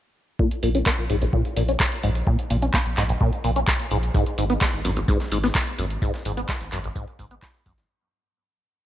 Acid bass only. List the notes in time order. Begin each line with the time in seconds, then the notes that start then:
0.39 A#2
0.63 A#2
0.75 C#4
0.86 A#3
1.10 G#2
1.22 A#1
1.33 A#2
1.57 A#2
1.69 C#4
2.03 G#2
2.27 A#2
2.50 A#2
2.62 C#4
2.74 A#3
2.97 G#2
3.09 A#1
3.21 A#2
3.44 A#2
3.56 C#4
3.91 G#2
4.14 G#2
4.38 G#2
4.50 B3
4.61 G#3
4.85 F#2
4.97 G#1
5.08 G#2
5.32 G#2
5.44 B3
5.79 F#2
6.02 G#2
6.25 G#2
6.37 B3
6.49 G#3
6.72 F#2
6.84 G#1
6.96 G#2
7.19 G#2
7.31 B3
7.66 F#2